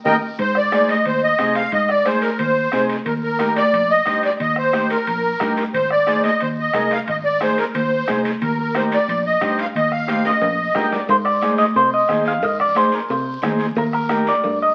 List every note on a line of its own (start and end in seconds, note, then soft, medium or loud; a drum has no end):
0.05 0.18 D#2 medium
0.05 0.16 D#4 loud
0.05 0.16 G4 medium
0.05 0.16 A#4 medium
0.05 0.16 A#4 loud
0.05 0.16 D#5 medium
0.05 0.16 G5 medium
0.05 bombo low loud
0.05 high conga loud
0.05 high timbale medium
0.05 long guiro loud
0.38 0.92 G#2 loud
0.38 0.57 C5 medium
0.38 bombo low medium
0.38 high timbale medium
0.38 long guiro medium
0.55 0.91 D5 loud
0.55 bombo rim medium
0.72 0.95 D#4 medium
0.72 0.95 G#4 medium
0.72 0.96 C5 medium
0.72 bombo rim medium
0.72 high conga medium
0.72 high timbale medium
0.72 short guiro medium
0.88 1.05 D#5 loud
0.88 high conga medium
0.88 high timbale medium
0.88 short guiro medium
1.05 1.32 D#2 medium
1.05 1.22 C5 medium
1.05 high timbale medium
1.05 long guiro medium
1.23 1.54 D#5 medium
1.38 1.66 C3 medium
1.38 1.62 D#4 medium
1.38 1.63 G#4 medium
1.38 1.63 C5 medium
1.38 bombo low medium
1.38 bombo rim medium
1.38 high conga medium
1.38 high timbale medium
1.38 short guiro medium
1.54 1.71 F5 loud
1.54 high timbale medium
1.54 short guiro medium
1.71 2.26 G#2 medium
1.71 1.90 D#5 loud
1.71 bombo low medium
1.71 high timbale medium
1.71 long guiro medium
1.89 2.07 D5 loud
1.89 bombo rim medium
2.05 2.29 D#4 medium
2.05 2.30 G#4 medium
2.05 2.23 C5 medium
2.05 2.30 C5 medium
2.05 bombo rim medium
2.05 high conga medium
2.05 high timbale medium
2.05 short guiro medium
2.22 2.38 A#4 medium
2.22 high timbale medium
2.22 short guiro medium
2.39 2.66 D#2 medium
2.39 2.86 C5 medium
2.39 high timbale medium
2.39 long guiro medium
2.72 2.99 C3 medium
2.72 2.96 D#4 medium
2.72 2.96 G#4 medium
2.72 2.97 C5 medium
2.72 bombo low medium
2.72 bombo rim medium
2.72 high conga medium
2.72 high timbale medium
2.72 short guiro medium
2.89 high timbale medium
2.89 short guiro medium
3.06 3.59 D#2 loud
3.06 3.14 A#4 medium
3.06 bombo low medium
3.06 high timbale medium
3.06 long guiro medium
3.23 3.54 A#4 medium
3.39 3.63 D#4 medium
3.39 3.63 G4 medium
3.39 3.63 A#4 medium
3.39 bombo rim medium
3.39 high conga medium
3.39 high timbale medium
3.39 short guiro medium
3.56 3.91 D5 loud
3.56 high conga medium
3.56 high timbale medium
3.56 short guiro medium
3.73 4.00 A#1 medium
3.73 high timbale medium
3.73 long guiro medium
3.91 4.21 D#5 loud
4.06 4.33 G2 medium
4.06 4.30 D#4 medium
4.06 4.30 G4 medium
4.06 4.30 C5 medium
4.06 bombo low medium
4.06 bombo rim medium
4.06 high conga medium
4.06 high timbale medium
4.06 short guiro medium
4.23 4.32 D5 medium
4.23 high timbale medium
4.23 short guiro medium
4.40 4.93 D#2 medium
4.40 4.56 D#5 medium
4.40 bombo low medium
4.40 high timbale medium
4.40 long guiro medium
4.56 4.89 C5 medium
4.56 bombo rim medium
4.73 4.96 D#4 medium
4.73 4.97 G4 medium
4.73 4.97 C5 medium
4.73 bombo rim medium
4.73 high conga medium
4.73 high timbale medium
4.73 short guiro medium
4.90 5.53 A#4 loud
4.90 high timbale medium
4.90 short guiro medium
5.07 5.34 A#1 medium
5.07 high timbale medium
5.07 long guiro medium
5.40 5.67 G2 medium
5.40 5.64 D#4 medium
5.40 5.64 G4 medium
5.40 5.64 A#4 medium
5.40 bombo low medium
5.40 bombo rim medium
5.40 high conga medium
5.40 high timbale medium
5.40 short guiro medium
5.56 high timbale medium
5.56 short guiro medium
5.73 6.27 G#1 medium
5.73 5.89 C5 medium
5.73 bombo low medium
5.73 high timbale medium
5.73 long guiro medium
5.90 6.22 D5 loud
5.90 bombo rim medium
6.06 6.30 D#4 medium
6.06 6.31 G#4 medium
6.06 6.31 C5 medium
6.06 bombo rim medium
6.06 high conga medium
6.06 high timbale medium
6.06 short guiro medium
6.24 6.42 D#5 medium
6.24 high conga medium
6.24 high timbale medium
6.24 short guiro medium
6.40 6.68 D#2 medium
6.40 6.49 C5 medium
6.40 high timbale medium
6.40 long guiro medium
6.60 6.93 D#5 medium
6.73 7.01 C2 medium
6.73 6.97 D#4 medium
6.73 6.97 G#4 medium
6.73 6.98 A#4 medium
6.73 bombo low medium
6.73 bombo rim medium
6.73 high conga medium
6.73 high timbale medium
6.73 low timbale medium
6.73 short guiro medium
6.91 7.00 F5 loud
6.91 high timbale medium
6.91 short guiro medium
7.07 7.61 G#1 loud
7.07 7.17 D#5 medium
7.07 bombo low medium
7.07 high timbale medium
7.07 long guiro medium
7.25 7.40 D5 medium
7.40 7.64 D#4 medium
7.40 7.64 G#4 medium
7.40 7.65 C5 medium
7.40 7.57 C5 medium
7.40 bombo rim medium
7.40 high conga medium
7.40 high timbale medium
7.40 short guiro medium
7.58 7.65 A#4 medium
7.58 high timbale medium
7.58 short guiro medium
7.74 8.01 D#2 medium
7.74 8.21 C5 medium
7.74 high timbale medium
7.74 long guiro medium
8.07 8.35 C2 medium
8.07 8.31 D#4 medium
8.07 8.31 G#4 medium
8.07 8.31 C5 medium
8.07 bombo low medium
8.07 bombo rim medium
8.07 high conga medium
8.07 high timbale medium
8.07 low timbale medium
8.07 short guiro medium
8.25 high timbale medium
8.25 short guiro medium
8.41 8.95 D#2 loud
8.41 8.58 A#4 medium
8.41 bombo low medium
8.41 high timbale medium
8.41 long guiro medium
8.59 8.74 A#4 medium
8.75 8.98 D#4 medium
8.75 8.98 G4 medium
8.75 8.99 A#4 medium
8.75 8.84 C5 medium
8.75 bombo rim medium
8.75 high conga medium
8.75 high timbale medium
8.75 short guiro medium
8.92 9.24 D5 medium
8.92 high timbale medium
8.92 short guiro medium
9.08 9.35 A#1 medium
9.08 high timbale medium
9.08 long guiro medium
9.26 9.57 D#5 medium
9.41 9.68 G2 medium
9.41 9.65 D#4 medium
9.41 9.65 G4 medium
9.41 9.65 C5 medium
9.41 bombo low medium
9.41 bombo rim medium
9.41 high conga medium
9.41 high timbale medium
9.41 short guiro medium
9.58 9.67 F5 medium
9.58 high timbale medium
9.58 short guiro medium
9.75 10.29 D#2 medium
9.75 9.91 D#5 medium
9.75 bombo low medium
9.75 high timbale medium
9.75 long guiro medium
9.92 10.26 F5 medium
9.92 bombo rim medium
10.08 10.32 D#4 medium
10.08 10.32 G4 medium
10.08 10.32 C5 medium
10.08 bombo rim medium
10.08 high conga medium
10.08 high timbale medium
10.08 short guiro medium
10.25 10.88 D#5 medium
10.25 high timbale medium
10.25 short guiro medium
10.42 10.69 A#1 medium
10.42 high timbale medium
10.42 long guiro medium
10.75 11.02 G2 medium
10.75 10.99 D#4 medium
10.75 10.99 G4 medium
10.75 10.99 A#4 medium
10.75 10.91 G5 medium
10.75 bombo low medium
10.75 bombo rim medium
10.75 high conga medium
10.75 low timbale medium
10.75 short guiro medium
10.92 11.08 D5 medium
10.92 low timbale medium
10.92 short guiro medium
11.08 11.62 G#2 loud
11.08 11.15 C5 loud
11.08 bombo low medium
11.08 cowbell loud
11.08 long guiro medium
11.25 11.58 D5 loud
11.25 bombo rim medium
11.42 11.66 D#4 medium
11.42 11.66 G#4 medium
11.42 11.66 C5 medium
11.42 bombo rim medium
11.42 high conga medium
11.42 short guiro medium
11.58 11.63 D#5 loud
11.58 high conga medium
11.58 short guiro medium
11.74 12.02 C3 medium
11.74 11.93 C5 loud
11.74 cowbell medium
11.74 long guiro medium
11.94 12.27 D#5 loud
12.08 12.43 D#2 medium
12.08 12.33 D#4 medium
12.08 12.33 G#4 medium
12.08 12.33 C5 medium
12.08 bombo low medium
12.08 bombo rim medium
12.08 high conga medium
12.08 short guiro medium
12.25 12.44 F5 loud
12.25 short guiro medium
12.42 12.96 G#2 medium
12.42 12.60 D#5 loud
12.42 bombo low medium
12.42 cowbell loud
12.42 long guiro medium
12.59 12.76 D5 medium
12.59 bombo rim medium
12.59 low conga medium
12.75 13.00 D#4 medium
12.75 13.00 G#4 medium
12.75 13.00 C5 medium
12.75 12.95 C5 loud
12.75 bombo rim medium
12.75 high conga medium
12.75 short guiro medium
12.92 13.11 A#4 loud
12.92 high conga medium
12.92 short guiro medium
13.08 13.37 C3 loud
13.08 13.61 C5 loud
13.08 cowbell medium
13.08 long guiro medium
13.42 13.70 D#2 medium
13.42 13.66 D#4 medium
13.42 13.66 G#4 medium
13.42 13.67 C5 medium
13.42 bombo low medium
13.42 bombo rim medium
13.42 high conga medium
13.42 low conga medium
13.42 low timbale medium
13.42 short guiro medium
13.59 short guiro medium
13.75 14.30 D#2 loud
13.75 13.83 A#4 medium
13.75 bombo low medium
13.75 cowbell loud
13.75 long guiro medium
13.93 14.25 A#4 loud
13.93 bombo rim medium
14.09 14.33 D#4 medium
14.09 14.33 G4 medium
14.09 14.34 A#4 medium
14.09 bombo rim medium
14.09 high conga medium
14.09 short guiro medium
14.27 14.62 D5 loud
14.27 short guiro medium
14.44 14.71 G2 medium
14.44 cowbell medium
14.44 long guiro medium
14.62 14.75 D#5 medium